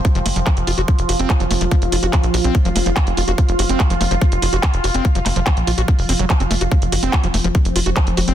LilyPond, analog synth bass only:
\new Staff \with { instrumentName = "Analog synth bass" } { \clef bass \time 4/4 \tempo 4 = 144 r16 f,,16 ges,,16 f,,16 r16 f,,16 f,,16 f,,16 r16 f,,16 f,,16 f,,16 r16 f,,16 f,,16 f,,16 | r16 f,,16 f,,16 f,,16 r16 bes,,16 bes,,16 bes,,16 r16 f,,16 f,,16 f,,16 r16 f,,16 f,,16 f,,16 | r16 f,,16 ges,,16 f,,16 r16 f,,16 f,,16 f,,16 r16 f,,16 f,,16 f,,16 r16 f,,16 f,,16 f,,16 | r16 f,,16 f,,16 f,,16 r16 bes,,16 bes,,16 bes,,16 r16 f,,16 f,,16 f,,16 r16 f,,16 f,,16 f,,16 |
r16 f,,16 ges,,16 f,,16 r16 f,,16 f,,16 f,,16 r16 f,,16 f,,16 f,,16 r16 f,,16 f,,16 f,,16 | }